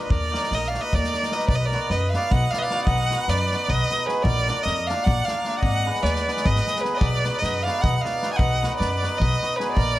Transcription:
0.03 accordion B4, violin D#5
0.10 upright bass D#2, accordion A#4, violin D5, kick
0.31 hammered dulcimer A#3 D#4 F#4 A#4, snare
0.43 snare
0.51 upright bass A#1, accordion A#4, violin D#5, snare
0.64 violin F5, snare
0.69 hammered dulcimer A#3, accordion D5
0.74 hammered dulcimer D#4 F#4 A#4, snare
0.81 accordion B4, violin D#5
0.93 upright bass D#2, violin D5, kick
0.97 accordion A#4
1.04 snare
1.12 hammered dulcimer A#3 D#4 F#4 A#4, snare
1.23 snare
1.30 hammered dulcimer A#3 D#4 F#4 A#4, violin D#5, snare
1.35 accordion B4
1.39 snare
1.48 upright bass B1, accordion B4, violin D5, kick
1.55 accordion B4, violin D#5
1.65 accordion A#4, violin D5
1.72 hammered dulcimer B3 D#4 F#4 B4, snare
1.90 upright bass F#2, accordion B4, violin D#5, snare
2.12 hammered dulcimer B3 D#4 F#4 B4, accordion D5, violin F5, snare
2.31 upright bass B1, accordion D#5, violin F#5, kick
2.50 hammered dulcimer B3 D#4 F#4, accordion D5, violin F5, snare
2.54 hammered dulcimer B4, violin D#5
2.59 accordion B4, violin F5
2.63 accordion D5
2.70 hammered dulcimer B3 D#4 F#4 B4, snare
2.85 upright bass B1, accordion D#5, violin F#5, kick
3.10 hammered dulcimer B3 D#4 F#4 B4, snare
3.28 upright bass F#2, accordion B4, violin D5, snare
3.51 hammered dulcimer B3 D#4 F#4 B4, snare
3.68 upright bass B1, accordion B4, violin D#5, kick
3.89 hammered dulcimer B3 D#4 F#4 B4, snare
4.06 hammered dulcimer B3 D#4 F#4 B4, accordion G#4, violin B4, snare
4.22 upright bass A#1, accordion A#4, violin D5, kick
4.48 hammered dulcimer A#3 D4 F4 A#4, snare
4.63 upright bass F2, accordion A#4, violin D#5
4.67 snare
4.87 hammered dulcimer A#3 D4 F4 A#4, accordion D5, violin F5, snare
5.04 upright bass A#1, accordion D5, violin F#5, kick
5.24 hammered dulcimer A#3 D4, accordion D5, violin F5, snare
5.29 hammered dulcimer F4 A#4
5.44 hammered dulcimer A#3 D4 F4 A#4, snare
5.59 upright bass G#1, accordion D#5, violin F#5, kick
5.86 hammered dulcimer B3 D#4 G#4 B4
5.95 snare
6.01 upright bass D#2, accordion B4, violin D5, snare
6.16 snare
6.28 hammered dulcimer B3 D#4 G#4 B4, snare
6.37 snare
6.43 upright bass G#1, accordion B4, violin D#5, kick
6.56 snare
6.66 hammered dulcimer B3 D#4 G#4 B4, snare
6.76 snare
6.80 hammered dulcimer B3 D#4, accordion G#4, violin B4
6.84 hammered dulcimer G#4 B4, snare
6.94 accordion B4, violin D5 D#5
6.99 upright bass B1, accordion B4, kick
7.24 hammered dulcimer B3 D#4 F#4 B4, snare
7.38 upright bass F#2, accordion B4, violin D#5
7.44 snare
7.62 hammered dulcimer B3, accordion D5, violin F5
7.66 hammered dulcimer D#4 F#4 B4, snare
7.81 upright bass B1, accordion D#5, violin F#5, kick
7.97 accordion D#5, violin F5 F#5
8.03 hammered dulcimer B3 D#4 F#4 B4, accordion D5, snare
8.22 hammered dulcimer B3 D#4 F#4 B4, snare
8.33 accordion F5, violin F#5 G#5
8.38 upright bass B1, accordion D#5, kick
8.63 hammered dulcimer B3 D#4 F#4 B4, snare
8.77 upright bass F#2, accordion B4, violin D5, snare
9.01 hammered dulcimer B3 D#4 F#4 B4, snare
9.18 upright bass B1, accordion B4, violin D#5, kick
9.41 hammered dulcimer B3 D#4 F#4 B4, snare
9.56 hammered dulcimer B3 D#4, accordion G#4, violin B4
9.60 hammered dulcimer F#4 B4, snare
9.72 accordion A#4, violin D5
9.76 upright bass A#1, kick

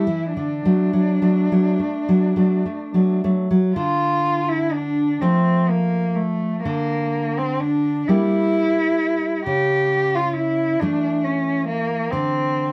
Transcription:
Already playing: cello E4
0.07 nylon-string guitar E3
0.35 nylon-string guitar D3, cello D4
0.65 nylon-string guitar F#3 A3
0.93 nylon-string guitar F#3
1.22 nylon-string guitar F#3 A3
1.52 nylon-string guitar F#3 A3
1.79 nylon-string guitar A3
2.09 nylon-string guitar F#3
2.36 nylon-string guitar F#3 A3
2.65 nylon-string guitar A3
2.94 nylon-string guitar F#3 A3
3.24 nylon-string guitar F#3 A3
3.51 nylon-string guitar F#3
3.76 nylon-string guitar D3, cello F4
4.48 cello E4
4.73 cello D4
5.21 nylon-string guitar F3 A3, cello C4
5.69 cello A#3
6.16 cello A3
6.64 nylon-string guitar D3, cello A#3
7.38 cello C4
7.60 cello D4
8.08 nylon-string guitar G3 A#3, cello E4
9.46 nylon-string guitar C#3, cello G4
10.15 cello F4
10.37 cello E4
10.80 nylon-string guitar E3 A3, cello D4
11.24 cello C#4
11.68 cello A#3
12.11 nylon-string guitar D3, cello C4

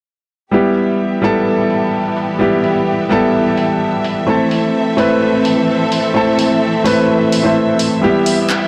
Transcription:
0.52 string section E3 B3 G4 E5, grand piano G3 B3 E4 G4
0.76 open hi-hat
1.22 grand piano G3 B3 E4 A4, open hi-hat
1.70 open hi-hat
2.17 open hi-hat
2.39 grand piano G3 B3 E4 G4
2.64 open hi-hat
3.09 grand piano G3 B3 E4 A4, open hi-hat
3.57 open hi-hat
4.04 open hi-hat
4.27 grand piano A3 C4 E4 A4, string section C4 A4
4.51 open hi-hat
4.97 grand piano A3 C4 E4 B4, open hi-hat
5.45 open hi-hat
5.92 open hi-hat
6.14 grand piano A3 C4 E4 A4
6.39 open hi-hat
6.84 grand piano A3 C4 E4 B4, open hi-hat
7.32 open hi-hat
7.43 grand piano A3 C4 E4 C5
7.79 open hi-hat
8.01 grand piano G3 B3 E4 G4, string section B3 G4
8.26 open hi-hat
8.49 clap

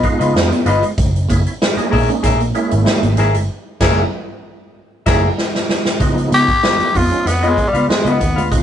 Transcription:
0.03 tonewheel organ G#3 B3 D#4 F4, muted clean electric guitar stroke, kick, closed hi-hat
0.19 picked electric bass C#2, clean electric guitar B3 F4 B4 D#5, closed hi-hat
0.35 picked electric bass F2, snare
0.51 clean electric guitar B3, closed hi-hat
0.66 picked electric bass G1, tonewheel organ G#3 B3 D#4 F4, clean electric guitar F4 B4 D#5, muted clean electric guitar stroke, closed hi-hat
0.83 clean electric guitar G#3, tonewheel organ D#4 F4, closed hi-hat
0.98 picked electric bass F#1, clean electric guitar G#3, kick, closed hi-hat
1.16 closed hi-hat
1.29 picked electric bass F#1, tonewheel organ G#3 A#3 C#4 E4, clean electric guitar A#3, kick, closed hi-hat
1.46 tonewheel organ C#4 E4, muted clean electric guitar stroke, closed hi-hat
1.62 muted clean electric guitar stroke, snare
1.77 tonewheel organ G#3 A#3 C#4 D#4, muted picked electric bass stroke, closed hi-hat
1.91 picked electric bass A#1, clean electric guitar A#3 G#4 A#4 E5, kick, open hi-hat
2.09 clean electric guitar C#4, closed hi-hat
2.23 picked electric bass A#1, clean electric guitar G#4 A#4 E5, kick, snare, closed hi-hat
2.40 clean electric guitar A#3, closed hi-hat
2.55 tonewheel organ G#3 A#3 C#4 E4, muted clean electric guitar stroke, closed hi-hat
2.71 picked electric bass G#1, clean electric guitar A#3, closed hi-hat
2.86 snare
3.03 picked electric bass G#1, clean electric guitar A#3, closed hi-hat
3.17 picked electric bass G#1, tonewheel organ G#3 A#3 C#4 E4, clean electric guitar G#4 A#4 E5, muted clean electric guitar stroke, snare, closed hi-hat
3.34 picked electric bass G1, clean electric guitar G#3, tonewheel organ C#4 E4, closed hi-hat
3.81 picked electric bass F#1, tonewheel organ G#3 A#3 C#4 F#4, clean electric guitar G#4 A#4 E5, kick, snare, crash
5.06 picked electric bass F#1, tonewheel organ G#3 A#3 C#4 E4, clean electric guitar G#4 A#4 E5, kick, snare, crash
5.38 snare
5.55 snare
5.69 snare
5.85 snare
6.00 picked electric bass C#2, tonewheel organ F3 G#3 B3 D#4, clean electric guitar G#3, kick, closed hi-hat
6.18 closed hi-hat
6.32 picked electric bass C#2, clean electric guitar B3, tenor saxophone G4, closed hi-hat
6.48 muted clean electric guitar stroke, kick, closed hi-hat
6.63 tonewheel organ F3 G#3 B3 D#4, muted clean electric guitar stroke, snare
6.79 muted picked electric bass stroke, closed hi-hat
6.95 picked electric bass F2, tonewheel organ F3 G#3 B3 D#4, clean electric guitar B3, tenor saxophone F4, kick, open hi-hat
7.11 clean electric guitar C#4, closed hi-hat
7.26 picked electric bass F2, tenor saxophone B3, snare, closed hi-hat
7.42 tonewheel organ F3 G#3 B3 C#4, clean electric guitar B3 F4 B4 D#5, closed hi-hat
7.48 tenor saxophone G#3
7.57 muted clean electric guitar stroke, kick, closed hi-hat
7.68 tenor saxophone G3
7.73 picked electric bass C#2, tonewheel organ B3 D#4, clean electric guitar B3 F4 B4 F5, closed hi-hat
7.88 tonewheel organ F3 G#3 B3 D#4, tenor saxophone G#3, snare
8.05 picked electric bass C#2, clean electric guitar B3 F4 B4 D#5, tonewheel organ B3 D#4, closed hi-hat
8.10 tenor saxophone B3
8.21 picked electric bass D#2, muted clean electric guitar stroke, kick, closed hi-hat
8.36 picked electric bass D2, clean electric guitar G#3 F4 B4 F5, closed hi-hat
8.51 picked electric bass C#2, tonewheel organ F3 G#3 B3 D#4, clean electric guitar G#3, kick, closed hi-hat
8.58 tonewheel organ F4

